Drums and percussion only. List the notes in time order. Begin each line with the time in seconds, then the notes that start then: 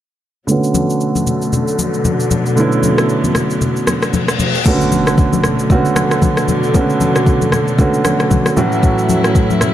0.48 shaker
0.64 shaker
0.74 high conga, shaker
0.90 shaker
1.01 shaker
1.15 high conga, shaker
1.27 low conga, shaker
1.42 shaker
1.53 low conga, shaker
1.68 shaker
1.79 high conga, shaker
1.94 shaker
2.05 high conga, low conga, shaker
2.20 shaker
2.31 high conga, low conga, shaker
2.46 shaker
2.57 shaker
2.72 shaker
2.83 high conga, shaker
2.98 cross-stick, shaker
3.09 shaker
3.24 high conga, shaker
3.35 cross-stick, low conga, shaker
3.50 shaker
3.61 low conga, shaker
3.76 shaker
3.87 cross-stick, high conga, shaker
4.02 cross-stick, shaker
4.13 high conga, low conga, shaker
4.28 cross-stick, shaker
4.39 high conga, low conga, shaker
4.55 shaker
4.66 kick, crash, shaker
4.81 shaker
4.92 high conga, shaker
5.07 cross-stick, shaker
5.18 kick, shaker
5.33 high conga, shaker
5.44 cross-stick, low conga, shaker
5.59 shaker
5.70 kick, low conga, shaker
5.85 shaker
5.96 cross-stick, high conga, shaker
6.11 cross-stick, shaker
6.22 kick, high conga, low conga, shaker
6.37 cross-stick, shaker
6.48 high conga, low conga, shaker
6.63 shaker
6.74 kick, shaker
6.90 shaker
7.01 high conga, shaker
7.16 cross-stick, shaker
7.26 kick, shaker
7.42 high conga, shaker
7.52 cross-stick, low conga, shaker
7.68 shaker
7.79 kick, low conga, shaker
7.94 shaker
8.05 cross-stick, high conga, shaker
8.20 cross-stick, shaker
8.31 kick, high conga, low conga, shaker
8.46 cross-stick, shaker
8.57 high conga, low conga, shaker
8.72 shaker
8.83 kick, shaker
8.98 shaker
9.09 high conga, shaker
9.24 cross-stick, shaker
9.35 kick, shaker
9.50 high conga, shaker
9.61 cross-stick, low conga, shaker